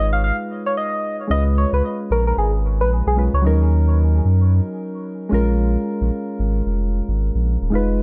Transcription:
Already playing: G#1 G#3 D#4 F4 B4
0.13 F5
0.24 F5
0.66 C#5
0.77 D#5
1.27 C#2 G#3 C#4 F4 D#5
1.32 B4
1.58 C#5
1.72 C#2 B4
2.10 A#1 A#4
2.27 A#4
2.37 G#1 G#4
2.79 A#1 B4
3.06 B1 G#4
3.16 G#3 C#4 F4 B4
3.33 C#2 C#5
3.42 D#2 F#3 C#4 D#4
3.47 A#4
4.25 F#2
5.29 A#1 G#3 C#4 F4
5.34 A#4
6.01 A#1
6.39 G#1
6.66 F1
7.08 G#1
7.34 A#1
7.61 D#1
7.70 F1 G#3 D#4 F4
7.75 B4

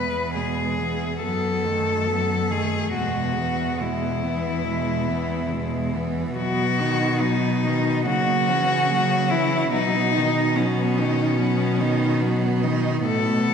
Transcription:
Already playing: E2 E3 B3 B4
0.35 B2 G#3 G#4
0.79 E3 B3
1.22 F#2 F#3 B3 A4
1.65 D#3 A3
2.07 F#3 B3
2.50 D#3 A3 G#4
2.94 E2 B2 G#3 F#4
3.36 E3 B3
3.80 B2 G#3 E4
4.24 E3 B3
4.67 B2 G#3
5.09 E3 B3
5.53 B2 G#3
5.95 E3 B3
6.37 B2 F#3 B3 F#4
6.79 D#3 D#4
7.20 F#3 B3 D#4
7.64 D#3 D#4
8.06 C#3 F#3 A#3 F#4
8.48 E3 C#4
8.89 F#3 A#3
9.30 E3 C#4 E4
9.72 B2 F#3 B3 D#4
10.13 D#3 D#4
10.56 F#3 B3 C#4
10.98 D#3 D#4
11.39 F#3 B3
11.80 D#3 D#4
12.22 F#3 B3
12.63 D#3 D#4
13.05 A2 B3 A4
13.28 B2
13.50 D#3

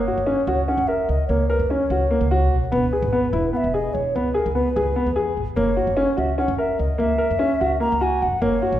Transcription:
Already playing: F#1 C#5
0.07 F#4
0.18 F#1
0.27 C#4
0.47 C#2 F#4
0.67 C#4 F#5
0.77 F#1
0.87 A#4 E5
1.09 C#2 D#5
1.28 C#2 A#3 C#5
1.49 A#4 B4
1.59 F#2
1.70 C#4 C#5
1.90 C#2 F#4
2.11 A#3
2.21 C#2
2.31 F#4
2.52 B1
2.72 E1 B3 B4
2.93 G#4
3.02 G#1
3.12 B3
3.33 E1 E4
3.53 B3 E5 F#5
3.64 E1
3.74 G#4 D#5
3.94 E1 C#5
4.15 C#2 B3 B4
4.34 G#4 A#4
4.46 C#2
4.55 B3 B4
4.76 C#2 G#4
4.96 B3
5.07 E2
5.16 G#4
5.37 G#1
5.56 F#1 A#3 C#5
5.76 F#4
5.87 F#1
5.97 C#4
6.17 C#2 F#4 E5
6.38 C#4 F#5
6.48 F#1
6.58 A#4 E5
6.79 C#2 D#5
6.98 C#2 A#3 E5
7.18 A#4
7.31 F#2
7.39 C#4
7.61 C#2 F#4
7.80 A#3 A#5
7.92 C#2
8.01 F#4 G#5
8.22 F#1 F#5
8.42 F#1 A#3 C#5
8.62 F#4
8.72 A#1

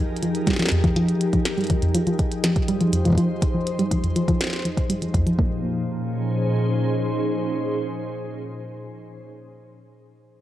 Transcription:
Already playing: F3 D#4 G4 G#4 A#4
0.17 closed hi-hat
0.23 F3, closed hi-hat
0.35 closed hi-hat
0.47 G3, kick, snare, closed hi-hat
0.50 snare
0.53 snare
0.56 F3, snare
0.59 snare, closed hi-hat
0.62 snare
0.66 snare
0.69 F2, snare, closed hi-hat
0.84 F3, kick, closed hi-hat
0.96 F3, closed hi-hat
1.09 closed hi-hat
1.21 closed hi-hat
1.33 F3, kick, closed hi-hat
1.45 snare, closed hi-hat
1.58 G3, closed hi-hat
1.61 closed hi-hat
1.64 closed hi-hat
1.67 closed hi-hat
1.70 F3, kick, closed hi-hat
1.82 F2, closed hi-hat
1.94 F3, closed hi-hat
2.07 F3, closed hi-hat
2.19 kick, closed hi-hat
2.32 closed hi-hat
2.44 F3, snare, closed hi-hat
2.55 C5, kick, closed hi-hat
2.68 G3, closed hi-hat
2.81 F3, closed hi-hat
2.93 F2, closed hi-hat
3.05 F3, kick, closed hi-hat
3.08 kick
3.10 kick
3.13 kick
3.15 F3, kick, closed hi-hat
3.42 kick, closed hi-hat
3.54 F3
3.67 closed hi-hat
3.79 G3, closed hi-hat
3.91 F3, kick, closed hi-hat
4.04 F2, closed hi-hat
4.16 F3, closed hi-hat
4.28 F3, kick, closed hi-hat
4.41 snare, closed hi-hat
4.44 snare
4.47 snare
4.50 snare
4.53 snare, closed hi-hat
4.56 snare
4.59 snare
4.62 F3, snare, closed hi-hat
4.77 kick, closed hi-hat
4.90 G3, closed hi-hat
5.02 F3, closed hi-hat
5.14 F2, kick, closed hi-hat
5.26 F3, closed hi-hat
5.39 A#2 A#3, kick
5.46 F3
5.78 C#4
5.85 D#4
5.93 G#4
6.00 C5

